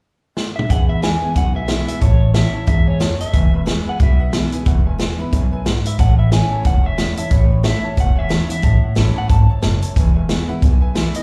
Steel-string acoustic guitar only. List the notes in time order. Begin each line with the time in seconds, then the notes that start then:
0.71 E2
1.02 E3 G#3 B3 E4
1.21 B3 E4
1.36 B2
1.68 E3 G#3 B3 E4
2.01 A2
2.34 E3 A3 C#4 E4
2.54 C#4 E4
2.67 G#2
3.00 F#2
3.34 E2
3.66 E3 G#3 B3 E4
4.00 B2
4.33 E3 G#3 B3 E4
4.52 B3 E4
4.66 E2
4.99 E3 G#3 B3 E4
5.18 B3 E4
5.33 F#2
5.66 G#2
5.99 A2
6.32 E3 A3 C#4 E4
6.65 E2
6.98 E3 A3 C#4 E4
7.17 C#4 E4
7.31 A2
7.63 E3 A3 C#4 E4
7.82 C#4 E4
7.97 E2
8.29 E3 A3 C#4 E4
8.49 C#4 E4
8.62 A2
8.95 E3 A3 C#4 E4
9.30 G#2
9.63 F#2
9.97 E2
10.29 E3 G#3 B3 E4
10.49 B3 E4
10.63 B2
10.95 E3 G#3 B3 E4
11.15 B3 E4